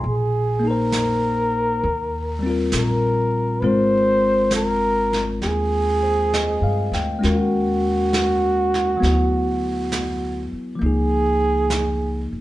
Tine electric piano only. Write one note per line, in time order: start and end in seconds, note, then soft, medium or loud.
0.00 0.14 C6 soft
0.59 1.81 A#3 soft
0.59 1.83 D#4 soft
0.67 1.85 G#4 soft
0.67 1.86 C5 soft
2.39 3.60 G3 soft
2.39 3.62 C4 soft
2.46 3.63 F4 soft
2.46 3.63 A#4 soft
3.62 7.18 G#3 soft
3.62 7.22 C4 soft
3.62 7.22 F4 soft
3.62 7.23 A#4 soft
6.03 6.49 C5 soft
6.34 6.90 D#5 soft
6.64 7.09 F5 soft
6.94 7.40 G5 soft
7.19 9.00 G#3 soft
7.19 9.01 C#4 soft
7.19 9.02 F#4 soft
7.25 9.03 A#4 soft
8.97 10.79 F#3 soft
8.97 10.80 B3 soft
9.04 10.82 E4 soft
9.04 10.84 G#4 medium
10.75 12.41 F3 soft
10.75 12.41 A#3 soft
10.83 12.41 D#4 soft
10.83 12.41 G#4 soft